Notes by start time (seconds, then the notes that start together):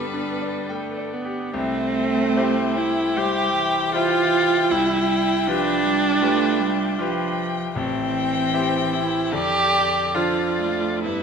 Already playing: G2 D3 G3 B3 D4 G4 B4 D5 G5
0.13 D4
0.42 D5
0.69 A3 G5
0.97 D5
1.13 B3
1.25 G4
1.52 C2 A3 C4 G5
2.37 E4 G4 C5
2.78 E4
3.16 G3 E4 G4 C5
3.56 E3
3.94 E4 F4 G4 C5
4.70 C2 G3 E4
5.47 F3 D4 F4 G4 B4
5.85 G3
6.21 A3 F4 G4 B4
6.60 G3
6.99 F3 F4 G4 B4
7.75 A1 E3 C4 G5
8.53 E4 G4 C5
8.93 E4
9.32 F2 D3 G4 D5
10.14 F3 D4 F4 A4 C5 D5
10.61 A3
11.04 G2 B3 E4 B4